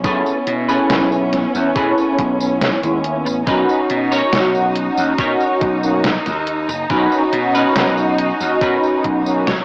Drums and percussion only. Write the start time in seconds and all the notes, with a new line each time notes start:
0.04 kick, closed hi-hat, tambourine
0.26 tambourine
0.47 closed hi-hat
0.69 tambourine
0.90 snare, closed hi-hat, tambourine
1.12 tambourine
1.33 snare, closed hi-hat
1.55 tambourine
1.76 kick, closed hi-hat, tambourine
1.98 tambourine
2.18 kick, closed hi-hat
2.40 tambourine
2.61 snare, closed hi-hat, tambourine
2.83 closed hi-hat, tambourine
3.04 closed hi-hat
3.26 tambourine
3.47 kick, closed hi-hat, tambourine
3.69 tambourine
3.90 closed hi-hat
4.12 tambourine
4.33 snare, closed hi-hat, tambourine
4.55 tambourine
4.76 closed hi-hat
4.97 tambourine
5.18 kick, closed hi-hat, tambourine
5.40 tambourine
5.61 kick, closed hi-hat
5.83 tambourine
6.04 snare, closed hi-hat, tambourine
6.26 snare, closed hi-hat, tambourine
6.47 closed hi-hat
6.69 tambourine
6.90 kick, closed hi-hat, tambourine
7.12 tambourine
7.33 closed hi-hat
7.55 tambourine
7.76 snare, closed hi-hat, tambourine
7.98 tambourine
8.19 closed hi-hat
8.41 tambourine
8.61 kick, closed hi-hat, tambourine
8.83 tambourine
9.04 kick, closed hi-hat
9.26 tambourine
9.47 snare, closed hi-hat, tambourine